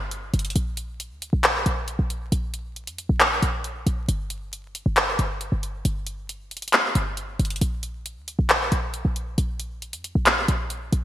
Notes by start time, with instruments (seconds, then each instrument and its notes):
Already playing: 808-style bass G1
0.11 closed hi-hat
0.34 808-style bass G1, closed hi-hat
0.39 closed hi-hat
0.45 closed hi-hat
0.50 closed hi-hat
0.56 808-style bass A#1, closed hi-hat
0.77 closed hi-hat
1.00 closed hi-hat
1.11 808-style bass D2
1.22 closed hi-hat
1.33 808-style bass A#1
1.43 clap, closed hi-hat
1.66 808-style bass A#1, closed hi-hat
1.88 closed hi-hat
1.99 808-style bass A#1
2.10 closed hi-hat
2.32 808-style bass A#1, closed hi-hat
2.54 closed hi-hat
2.76 closed hi-hat
2.87 808-style bass F2, closed hi-hat
2.98 closed hi-hat
3.09 808-style bass A#1
3.20 clap, closed hi-hat
3.42 808-style bass A#1, closed hi-hat
3.64 closed hi-hat
3.87 808-style bass A#1, closed hi-hat
4.08 808-style bass G1, closed hi-hat
4.30 closed hi-hat
4.53 closed hi-hat
4.75 closed hi-hat
4.86 808-style bass G1
4.96 clap, closed hi-hat
5.19 808-style bass G1, closed hi-hat
5.41 closed hi-hat
5.52 808-style bass G1
5.63 closed hi-hat
5.85 808-style bass G1, closed hi-hat
6.07 closed hi-hat
6.29 closed hi-hat
6.51 closed hi-hat
6.57 closed hi-hat
6.62 closed hi-hat
6.68 closed hi-hat
6.73 clap, closed hi-hat
6.95 808-style bass G1, closed hi-hat
7.17 closed hi-hat
7.39 808-style bass G1, closed hi-hat
7.45 closed hi-hat
7.50 closed hi-hat
7.56 closed hi-hat
7.61 808-style bass A#1, closed hi-hat
7.83 closed hi-hat
8.06 closed hi-hat
8.17 808-style bass D2
8.28 closed hi-hat
8.39 808-style bass A#1
8.49 clap, closed hi-hat
8.72 808-style bass A#1, closed hi-hat
8.94 closed hi-hat
9.05 808-style bass A#1
9.16 closed hi-hat
9.38 808-style bass A#1, closed hi-hat
9.60 closed hi-hat
9.82 closed hi-hat
9.93 808-style bass F2, closed hi-hat
10.04 closed hi-hat
10.15 808-style bass A#1
10.26 clap, closed hi-hat
10.48 808-style bass A#1, closed hi-hat
10.70 closed hi-hat
10.92 808-style bass A#1, closed hi-hat